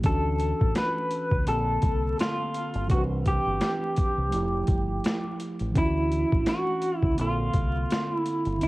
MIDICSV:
0, 0, Header, 1, 5, 480
1, 0, Start_track
1, 0, Tempo, 714286
1, 26, Time_signature, 4, 2, 24, 8
1, 5832, End_track
2, 0, Start_track
2, 0, Title_t, "Clean electric guitar"
2, 0, Program_c, 0, 27
2, 39, Note_on_c, 0, 69, 94
2, 519, Note_off_c, 0, 69, 0
2, 521, Note_on_c, 0, 71, 94
2, 995, Note_off_c, 0, 71, 0
2, 998, Note_on_c, 0, 69, 90
2, 1479, Note_off_c, 0, 69, 0
2, 1482, Note_on_c, 0, 65, 82
2, 1955, Note_off_c, 0, 65, 0
2, 1957, Note_on_c, 0, 66, 83
2, 2021, Note_off_c, 0, 66, 0
2, 2202, Note_on_c, 0, 67, 80
2, 3607, Note_off_c, 0, 67, 0
2, 3883, Note_on_c, 0, 64, 94
2, 4361, Note_on_c, 0, 66, 106
2, 4369, Note_off_c, 0, 64, 0
2, 4690, Note_off_c, 0, 66, 0
2, 4690, Note_on_c, 0, 64, 106
2, 4807, Note_off_c, 0, 64, 0
2, 4845, Note_on_c, 0, 65, 95
2, 5483, Note_off_c, 0, 65, 0
2, 5483, Note_on_c, 0, 64, 95
2, 5802, Note_off_c, 0, 64, 0
2, 5802, Note_on_c, 0, 64, 88
2, 5832, Note_off_c, 0, 64, 0
2, 5832, End_track
3, 0, Start_track
3, 0, Title_t, "Tine electric piano"
3, 0, Program_c, 1, 4
3, 0, Control_c, 1, 64, 127
3, 11, Note_on_c, 1, 52, 60
3, 27, Note_on_c, 1, 61, 61
3, 34, Control_c, 1, 64, 0
3, 43, Note_on_c, 1, 62, 61
3, 58, Note_on_c, 1, 66, 71
3, 143, Control_c, 1, 64, 127
3, 959, Note_off_c, 1, 52, 0
3, 967, Note_off_c, 1, 61, 0
3, 972, Note_on_c, 1, 50, 60
3, 975, Note_off_c, 1, 62, 0
3, 983, Note_off_c, 1, 66, 0
3, 986, Note_on_c, 1, 58, 56
3, 994, Control_c, 1, 64, 0
3, 1002, Note_on_c, 1, 60, 55
3, 1020, Note_on_c, 1, 67, 49
3, 1053, Note_off_c, 1, 67, 0
3, 1064, Note_on_c, 1, 69, 67
3, 1091, Control_c, 1, 64, 127
3, 1920, Note_off_c, 1, 50, 0
3, 1927, Note_off_c, 1, 58, 0
3, 1930, Note_on_c, 1, 52, 65
3, 1935, Note_off_c, 1, 60, 0
3, 1945, Note_on_c, 1, 60, 60
3, 1956, Control_c, 1, 64, 0
3, 1963, Note_on_c, 1, 62, 54
3, 1966, Note_off_c, 1, 69, 0
3, 1978, Note_on_c, 1, 71, 73
3, 2073, Control_c, 1, 64, 127
3, 2879, Note_off_c, 1, 52, 0
3, 2883, Note_on_c, 1, 53, 74
3, 2886, Note_off_c, 1, 60, 0
3, 2896, Note_off_c, 1, 62, 0
3, 2898, Note_on_c, 1, 57, 64
3, 2903, Note_off_c, 1, 71, 0
3, 2915, Control_c, 1, 64, 0
3, 2915, Note_on_c, 1, 64, 71
3, 2931, Note_on_c, 1, 67, 80
3, 3047, Control_c, 1, 64, 127
3, 3835, Note_off_c, 1, 53, 0
3, 3839, Note_on_c, 1, 52, 62
3, 3843, Note_off_c, 1, 57, 0
3, 3851, Note_off_c, 1, 64, 0
3, 3857, Note_on_c, 1, 61, 60
3, 3860, Note_off_c, 1, 67, 0
3, 3871, Note_on_c, 1, 62, 59
3, 3876, Control_c, 1, 64, 0
3, 3888, Note_on_c, 1, 65, 54
3, 3927, Note_off_c, 1, 65, 0
3, 3932, Note_on_c, 1, 66, 71
3, 3977, Control_c, 1, 64, 127
3, 4793, Note_off_c, 1, 52, 0
3, 4799, Note_on_c, 1, 50, 63
3, 4802, Note_off_c, 1, 61, 0
3, 4810, Note_off_c, 1, 62, 0
3, 4815, Note_on_c, 1, 58, 52
3, 4832, Note_on_c, 1, 60, 49
3, 4834, Control_c, 1, 64, 0
3, 4841, Note_off_c, 1, 66, 0
3, 4848, Note_on_c, 1, 69, 65
3, 4965, Control_c, 1, 64, 127
3, 5753, Note_off_c, 1, 50, 0
3, 5761, Note_off_c, 1, 58, 0
3, 5764, Note_on_c, 1, 50, 67
3, 5770, Note_off_c, 1, 60, 0
3, 5778, Note_off_c, 1, 69, 0
3, 5780, Note_on_c, 1, 59, 54
3, 5793, Control_c, 1, 64, 0
3, 5797, Note_on_c, 1, 60, 62
3, 5832, Note_off_c, 1, 50, 0
3, 5832, Note_off_c, 1, 59, 0
3, 5832, Note_off_c, 1, 60, 0
3, 5832, End_track
4, 0, Start_track
4, 0, Title_t, "Fingered electric bass"
4, 0, Program_c, 2, 33
4, 29, Note_on_c, 2, 38, 90
4, 349, Note_off_c, 2, 38, 0
4, 412, Note_on_c, 2, 33, 77
4, 496, Note_off_c, 2, 33, 0
4, 886, Note_on_c, 2, 37, 79
4, 972, Note_off_c, 2, 37, 0
4, 989, Note_on_c, 2, 34, 97
4, 1192, Note_off_c, 2, 34, 0
4, 1231, Note_on_c, 2, 36, 77
4, 1433, Note_off_c, 2, 36, 0
4, 1849, Note_on_c, 2, 31, 81
4, 1951, Note_on_c, 2, 36, 98
4, 1961, Note_off_c, 2, 31, 0
4, 2270, Note_off_c, 2, 36, 0
4, 2328, Note_on_c, 2, 31, 75
4, 2413, Note_off_c, 2, 31, 0
4, 2808, Note_on_c, 2, 36, 80
4, 2893, Note_off_c, 2, 36, 0
4, 2909, Note_on_c, 2, 29, 100
4, 3112, Note_off_c, 2, 29, 0
4, 3146, Note_on_c, 2, 31, 84
4, 3350, Note_off_c, 2, 31, 0
4, 3767, Note_on_c, 2, 33, 80
4, 3852, Note_off_c, 2, 33, 0
4, 3870, Note_on_c, 2, 38, 97
4, 4189, Note_off_c, 2, 38, 0
4, 4251, Note_on_c, 2, 33, 76
4, 4335, Note_off_c, 2, 33, 0
4, 4724, Note_on_c, 2, 37, 82
4, 4811, Note_off_c, 2, 37, 0
4, 4832, Note_on_c, 2, 34, 101
4, 5034, Note_off_c, 2, 34, 0
4, 5069, Note_on_c, 2, 36, 86
4, 5272, Note_off_c, 2, 36, 0
4, 5688, Note_on_c, 2, 31, 84
4, 5773, Note_off_c, 2, 31, 0
4, 5792, Note_on_c, 2, 36, 92
4, 5832, Note_off_c, 2, 36, 0
4, 5832, End_track
5, 0, Start_track
5, 0, Title_t, "Drums"
5, 23, Note_on_c, 9, 42, 70
5, 26, Note_on_c, 9, 36, 100
5, 90, Note_off_c, 9, 42, 0
5, 94, Note_off_c, 9, 36, 0
5, 265, Note_on_c, 9, 42, 58
5, 333, Note_off_c, 9, 42, 0
5, 410, Note_on_c, 9, 36, 84
5, 477, Note_off_c, 9, 36, 0
5, 505, Note_on_c, 9, 42, 86
5, 508, Note_on_c, 9, 38, 97
5, 572, Note_off_c, 9, 42, 0
5, 576, Note_off_c, 9, 38, 0
5, 744, Note_on_c, 9, 42, 65
5, 811, Note_off_c, 9, 42, 0
5, 884, Note_on_c, 9, 36, 79
5, 951, Note_off_c, 9, 36, 0
5, 987, Note_on_c, 9, 42, 77
5, 1054, Note_off_c, 9, 42, 0
5, 1222, Note_on_c, 9, 42, 57
5, 1228, Note_on_c, 9, 36, 82
5, 1289, Note_off_c, 9, 42, 0
5, 1295, Note_off_c, 9, 36, 0
5, 1474, Note_on_c, 9, 42, 80
5, 1485, Note_on_c, 9, 38, 102
5, 1541, Note_off_c, 9, 42, 0
5, 1552, Note_off_c, 9, 38, 0
5, 1709, Note_on_c, 9, 42, 69
5, 1776, Note_off_c, 9, 42, 0
5, 1840, Note_on_c, 9, 42, 32
5, 1907, Note_off_c, 9, 42, 0
5, 1947, Note_on_c, 9, 42, 71
5, 1948, Note_on_c, 9, 36, 102
5, 2014, Note_off_c, 9, 42, 0
5, 2015, Note_off_c, 9, 36, 0
5, 2189, Note_on_c, 9, 42, 58
5, 2191, Note_on_c, 9, 36, 67
5, 2256, Note_off_c, 9, 42, 0
5, 2258, Note_off_c, 9, 36, 0
5, 2424, Note_on_c, 9, 42, 81
5, 2428, Note_on_c, 9, 38, 100
5, 2492, Note_off_c, 9, 42, 0
5, 2495, Note_off_c, 9, 38, 0
5, 2664, Note_on_c, 9, 42, 66
5, 2672, Note_on_c, 9, 36, 86
5, 2731, Note_off_c, 9, 42, 0
5, 2739, Note_off_c, 9, 36, 0
5, 2905, Note_on_c, 9, 42, 82
5, 2972, Note_off_c, 9, 42, 0
5, 3139, Note_on_c, 9, 42, 56
5, 3146, Note_on_c, 9, 36, 77
5, 3206, Note_off_c, 9, 42, 0
5, 3213, Note_off_c, 9, 36, 0
5, 3389, Note_on_c, 9, 42, 76
5, 3400, Note_on_c, 9, 38, 111
5, 3456, Note_off_c, 9, 42, 0
5, 3468, Note_off_c, 9, 38, 0
5, 3627, Note_on_c, 9, 42, 68
5, 3694, Note_off_c, 9, 42, 0
5, 3759, Note_on_c, 9, 42, 33
5, 3826, Note_off_c, 9, 42, 0
5, 3866, Note_on_c, 9, 36, 96
5, 3866, Note_on_c, 9, 42, 75
5, 3933, Note_off_c, 9, 42, 0
5, 3934, Note_off_c, 9, 36, 0
5, 4110, Note_on_c, 9, 42, 53
5, 4177, Note_off_c, 9, 42, 0
5, 4249, Note_on_c, 9, 36, 91
5, 4316, Note_off_c, 9, 36, 0
5, 4342, Note_on_c, 9, 42, 88
5, 4346, Note_on_c, 9, 38, 94
5, 4410, Note_off_c, 9, 42, 0
5, 4413, Note_off_c, 9, 38, 0
5, 4581, Note_on_c, 9, 42, 67
5, 4649, Note_off_c, 9, 42, 0
5, 4721, Note_on_c, 9, 36, 79
5, 4789, Note_off_c, 9, 36, 0
5, 4824, Note_on_c, 9, 42, 79
5, 4892, Note_off_c, 9, 42, 0
5, 5063, Note_on_c, 9, 42, 57
5, 5066, Note_on_c, 9, 36, 82
5, 5130, Note_off_c, 9, 42, 0
5, 5134, Note_off_c, 9, 36, 0
5, 5311, Note_on_c, 9, 42, 76
5, 5323, Note_on_c, 9, 38, 100
5, 5378, Note_off_c, 9, 42, 0
5, 5390, Note_off_c, 9, 38, 0
5, 5548, Note_on_c, 9, 42, 66
5, 5615, Note_off_c, 9, 42, 0
5, 5680, Note_on_c, 9, 42, 30
5, 5748, Note_off_c, 9, 42, 0
5, 5788, Note_on_c, 9, 42, 72
5, 5832, Note_off_c, 9, 42, 0
5, 5832, End_track
0, 0, End_of_file